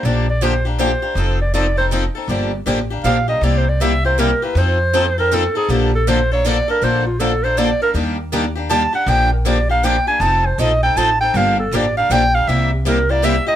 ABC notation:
X:1
M:3/4
L:1/16
Q:"Swing" 1/4=159
K:Bb
V:1 name="Clarinet"
d2 d2 c2 z2 c4- | c2 d2 d2 c2 z4 | z8 f2 e2 | (3d2 c2 d2 =e2 c2 B2 _c2 |
c6 B2 A2 _A2 | G2 A2 c2 _d2 =d2 B2 | c2 F2 A2 c2 d2 B2 | z8 a2 _g2 |
g2 B2 d2 f2 g2 _a2 | a2 c2 e2 g2 a2 g2 | f2 A2 d2 f2 g2 f2 | =e2 G2 B2 d2 e2 _e2 |]
V:2 name="Steel-string acoustic guitar"
[D,F,B,DG]2 z2 [D,F,B,DG] z [B,DG]2 [D,F,B,DG] z [B,DG]2 | [F,CEA]2 z2 [F,CEA] z [CEA]2 [F,CEA] z [CEA]2 | [D,F,B,DG]2 z2 [D,F,B,DG] z [B,DG]2 [D,F,B,DG] z [B,DG]2 | [C,G,B,=EG]2 z2 [C,G,B,EG] z [B,EG]2 [C,G,B,EG] z [B,EG]2 |
[F,CEA]2 z2 [F,CEA] z [CEA]2 [F,CEA] z [CEA]2 | [D,F,B,DA]2 z2 [D,F,B,DA] z [B,DA]2 [D,F,B,DA] z [B,DA]2 | [D,F,B,DA]2 z2 [D,F,B,DA] z [B,DA]2 [D,F,B,DA] z [B,DA]2 | [E,G,B,DG]2 z2 [E,G,B,DG] z [B,DG]2 [E,G,B,DG] z [B,DG]2 |
[D,F,B,DG]2 z2 [D,F,B,DG] z [B,DG]2 [D,F,B,DG] z [B,DG]2 | [F,CEA]2 z2 [F,CEA] z [CEA]2 [F,CEA] z [CEA]2 | [D,F,B,DG]2 z2 [D,F,B,DG] z [B,DG]2 [D,F,B,DG] z [B,DG]2 | [C,G,B,=EG]2 z2 [C,G,B,EG] z [B,EG]2 [C,G,B,EG] z [B,EG]2 |]
V:3 name="Steel-string acoustic guitar"
[D,F,B,DG]2 z2 [D,F,B,DG] z3 [D,F,B,DG] z3 | [F,CEA]2 z2 [F,CEA] z3 [F,CEA] z3 | [D,F,B,DG]2 z2 [D,F,B,DG] z3 [D,F,B,DG] z3 | [C,G,B,=EG]2 z2 [C,G,B,EG] z3 [C,G,B,EG] z3 |
[F,CEA]2 z2 [F,CEA] z3 [F,CEA] z3 | [D,F,B,DA]2 z2 [D,F,B,DA] z3 [D,F,B,DA] z3 | [D,F,B,DA]2 z2 [D,F,B,DA] z3 [D,F,B,DA] z3 | [E,G,B,DG]2 z2 [E,G,B,DG] z3 [E,G,B,DG] z3 |
[D,F,B,DG]2 z2 [D,F,B,DG] z3 [D,F,B,DG] z3 | [F,CEA]2 z2 [F,CEA] z3 [F,CEA] z3 | [D,F,B,DG]2 z2 [D,F,B,DG] z3 [D,F,B,DG] z3 | [C,G,B,=EG]2 z2 [C,G,B,EG] z3 [C,G,B,EG] z3 |]
V:4 name="Upright bass" clef=bass
B,,,12 | F,,,12 | G,,,4 A,,,4 B,,,4 | C,,12 |
F,,12 | B,,,12 | B,,,12 | E,,12 |
B,,,12 | F,,,4 B,,,4 A,,,4 | G,,,4 A,,,4 B,,,4 | C,,12 |]